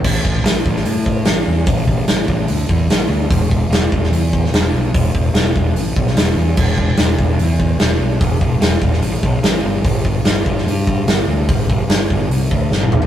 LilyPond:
<<
  \new Staff \with { instrumentName = "Fingered electric bass" } { \clef bass \time 4/4 \key c \major \tempo 4 = 147 a,,4 a,,8 a,,8 a,4 a,,8 e,8 | a,,8 a,,8 a,,8 a,,8 d,8 e,8 a,,8 d,8 | e,,4 e,,8 e,,8 e,4 e,,8 b,,8 | e,,8 e,,8 e,,8 e,,8 a,,8 b,,8 e,,8 e,8 |
e,,4 e,,8 e,,8 e,4 e,,8 b,,8 | e,,8 e,,8 e,,8 e,,8 a,,8 b,,8 a,,8 g,,8 | g,,4 g,,8 g,,8 g,4 g,,8 d,8 | g,,8 g,,8 g,,8 g,,8 c,8 d,8 g,,8 b,,8 | }
  \new DrumStaff \with { instrumentName = "Drums" } \drummode { \time 4/4 <cymc bd>8 bd8 <hho sn>8 bd16 sn16 hho8 bd8 <hho sn>4 | <hho bd>8 bd8 <hho sn>8 bd8 hho8 bd8 <hho sn>4 | <hho bd>8 bd8 <hho sn>8 bd16 sn16 hho8 bd16 sn16 <hho sn>4 | <hho bd>8 bd8 <hho sn>8 bd8 hho8 bd16 sn16 <hho sn>4 |
<cymc bd>8 bd8 <hho sn>8 bd8 hho8 bd8 <hho sn>4 | <hho bd>8 bd8 <hho sn>8 bd16 sn16 hho8 bd8 <hho sn>4 | <hho bd>8 bd8 <hho sn>8 bd16 sn16 hho8 bd8 <hho sn>4 | <hho bd>8 bd8 <hho sn>8 bd8 hho8 bd8 sn16 tommh16 toml16 tomfh16 | }
>>